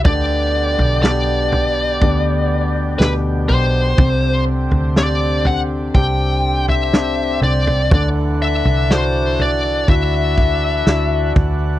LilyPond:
<<
  \new Staff \with { instrumentName = "Lead electric guitar" } { \time 4/4 \key g \major \tempo 4 = 61 d''4 d''2 b'8 c''8~ | c''8 r8 d''8 fis''8 g''8. e''8. d''8 | d''8 e''8 c''8 d''8 e''4. r8 | }
  \new Staff \with { instrumentName = "Grand piano" } { \time 4/4 \key g \major d4 <b d' g'>4 <b d' g'>4 <b, d' g'>4 | c4 <c' d' g'>4 <c' d' g'>4 <c' d' g'>4 | d4 <d' e' fis'>4 <d' e' fis'>4 <d' e' fis'>4 | }
  \new Staff \with { instrumentName = "Accordion" } { \time 4/4 \key g \major b,1 | c'1 | d'1 | }
  \new Staff \with { instrumentName = "Accordion" } { \time 4/4 \key g \major <d g'>1~ | <d g'>1 | <e fis''>1 | }
  \new Staff \with { instrumentName = "Fingered electric bass" } { \clef bass \time 4/4 \key g \major d,8. b,,4~ b,,16 d,4 d,8 b,,8 | c,8. d,4~ d,16 c,4. c,8 | d,8. c,4~ c,16 d,4 d,8 d,8 | }
  \new DrumStaff \with { instrumentName = "Drums" } \drummode { \time 4/4 <bd tomfh>8. tomfh16 sn8 tomfh8 <bd tomfh>4 sn8 tomfh8 | <bd tomfh>8. tomfh16 sn8 tomfh8 <bd tomfh>8. tomfh16 sn8 tomfh16 tomfh16 | <bd tomfh>8. tomfh16 sn8 tomfh8 <bd tomfh>8 bd8 sn8 <bd tomfh>8 | }
>>